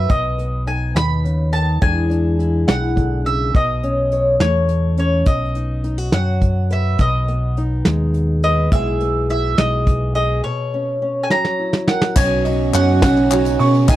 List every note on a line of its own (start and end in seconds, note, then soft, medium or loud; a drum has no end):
0.00 1.27 B4 medium
0.00 0.10 E5 medium
0.09 0.92 B1 medium
0.09 0.93 B2 medium
0.09 0.63 D#5 medium
0.09 kick medium
0.09 closed hi-hat medium
0.38 1.82 B3 soft
0.38 closed hi-hat medium
0.67 1.82 D#4 soft
0.67 0.96 G#5 medium
0.67 closed hi-hat medium
0.95 1.78 D#2 medium
0.95 1.24 B2 medium
0.95 1.52 B5 medium
0.95 snare medium
0.95 closed hi-hat medium
1.24 1.52 C#3 soft
1.24 closed hi-hat medium
1.52 1.81 D#3 soft
1.52 1.80 A5 medium
1.52 closed hi-hat medium
1.81 2.64 E2 medium
1.81 2.67 E3 medium
1.81 3.51 G#3 medium
1.81 2.09 D4 medium
1.81 2.39 E4 medium
1.81 3.55 G#4 medium
1.81 2.67 G#5 medium
1.81 kick loud
1.81 closed hi-hat medium
2.10 3.50 D4 soft
2.10 closed hi-hat medium
2.39 3.51 E4 soft
2.39 closed hi-hat soft
2.67 3.50 B1 medium
2.67 2.95 E3 medium
2.67 3.22 F#5 medium
2.67 snare medium
2.67 closed hi-hat medium
2.96 3.24 D3 medium
2.96 kick medium
2.96 closed hi-hat soft
3.25 3.54 C#3 medium
3.25 3.53 E5 medium
3.25 closed hi-hat soft
3.54 4.37 B1 medium
3.54 5.23 B2 medium
3.54 4.40 D#5 medium
3.54 kick medium
3.54 closed hi-hat medium
3.83 4.97 C#4 soft
3.83 closed hi-hat medium
4.12 5.24 C#5 medium
4.12 closed hi-hat medium
4.40 5.22 E2 medium
4.40 5.23 A3 medium
4.40 4.98 C#5 medium
4.40 snare medium
4.40 closed hi-hat medium
4.68 closed hi-hat medium
4.97 5.23 C#4 medium
4.97 5.26 C#5 medium
4.97 closed hi-hat medium
5.26 6.09 B1 medium
5.26 6.99 B2 medium
5.26 6.09 D#5 medium
5.26 kick medium
5.26 closed hi-hat medium
5.55 5.83 D#4 soft
5.55 closed hi-hat medium
5.84 5.98 D#4 medium
5.84 closed hi-hat soft
5.98 6.99 F#4 soft
6.12 6.95 F#2 medium
6.12 6.99 F#3 medium
6.12 6.72 F#5 medium
6.12 snare medium
6.12 closed hi-hat medium
6.41 kick medium
6.41 closed hi-hat medium
6.70 8.43 B4 medium
6.70 7.01 E5 medium
6.70 closed hi-hat medium
6.98 7.81 B1 medium
6.98 8.68 B2 medium
6.98 7.61 D#5 medium
6.98 kick medium
6.98 closed hi-hat medium
7.28 8.72 B3 medium
7.28 closed hi-hat medium
7.57 8.72 D#4 medium
7.57 closed hi-hat soft
7.85 8.68 D#2 medium
7.85 8.68 G#3 medium
7.85 snare medium
7.85 closed hi-hat medium
8.14 closed hi-hat medium
8.43 8.69 B4 medium
8.43 8.72 D#5 medium
8.43 closed hi-hat medium
8.72 9.54 B1 medium
8.72 10.41 B2 medium
8.72 9.56 G#3 medium
8.72 9.00 B3 medium
8.72 9.29 E4 medium
8.72 10.14 G#4 medium
8.72 9.29 E5 medium
8.72 kick loud
8.72 closed hi-hat medium
9.00 10.45 B3 soft
9.00 closed hi-hat medium
9.30 10.41 E4 medium
9.30 9.57 E5 medium
9.30 closed hi-hat medium
9.58 10.40 B1 medium
9.58 10.40 G#3 medium
9.58 10.14 D#5 medium
9.58 snare medium
9.58 closed hi-hat medium
9.87 kick medium
9.87 closed hi-hat medium
10.15 10.44 G#4 medium
10.15 10.42 D#5 medium
10.15 closed hi-hat medium
10.44 11.27 B2 medium
10.44 11.55 C#5 medium
10.74 11.01 C#4 soft
11.02 11.27 C#4 soft
11.24 11.30 G#5 medium
11.30 13.88 F#3 medium
11.30 11.87 A#5 medium
11.30 snare soft
11.45 snare soft
11.59 12.13 E4 soft
11.73 snare medium
11.88 12.13 A#4 medium
11.88 12.14 F#5 medium
11.88 snare medium
12.01 snare medium
12.15 12.70 B1 medium
12.15 12.45 B2 medium
12.15 13.87 C#3 medium
12.15 12.45 F#3 medium
12.15 13.87 F#3 medium
12.15 13.87 B3 medium
12.15 13.91 C#4 medium
12.15 12.45 C#4 medium
12.15 13.96 D#4 medium
12.15 12.45 D#4 medium
12.15 13.87 F#4 medium
12.15 12.44 F#4 medium
12.15 12.72 C#5 medium
12.15 12.74 G#5 medium
12.15 kick loud
12.15 clap medium
12.15 crash loud
12.15 tambourine loud
12.45 12.73 C#4 soft
12.45 12.74 D#4 soft
12.45 12.74 F#4 medium
12.45 13.59 D#5 medium
12.45 clap soft
12.45 ride medium
12.73 13.00 F#2 medium
12.73 13.02 F#3 soft
12.73 13.02 C#4 medium
12.73 13.01 D#4 medium
12.73 13.01 F#4 medium
12.73 13.29 C#5 medium
12.73 13.02 F#5 medium
12.73 clap medium
12.73 ride medium
13.02 13.56 B1 medium
13.02 13.32 B2 medium
13.02 13.28 F#3 medium
13.02 13.29 C#4 medium
13.02 13.30 D#4 medium
13.02 13.31 F#4 medium
13.02 13.56 F#5 medium
13.02 kick medium
13.02 snare loud
13.02 clap soft
13.02 ride medium
13.02 tambourine medium
13.17 clap soft
13.29 13.59 F#3 medium
13.29 13.59 C#4 medium
13.29 13.59 D#4 medium
13.29 13.58 F#4 medium
13.29 13.88 C#5 medium
13.29 clap loud
13.29 ride medium
13.46 clap soft
13.46 tambourine medium
13.59 13.90 B2 medium
13.59 13.88 C#4 soft
13.59 13.88 D#4 soft
13.59 13.88 F#4 medium
13.59 13.88 C#6 medium
13.59 ride medium
13.75 tambourine soft
13.88 13.96 B1 medium
13.88 13.96 B2 medium
13.88 13.96 D#3 medium
13.88 13.96 G#3 medium
13.88 13.96 B3 medium
13.88 13.96 D#4 loud
13.88 13.96 D#4 medium
13.88 13.96 G#4 medium
13.88 13.96 D#5 medium
13.88 13.96 G#5 loud
13.88 kick loud
13.88 clap medium
13.88 ride medium
13.88 tambourine medium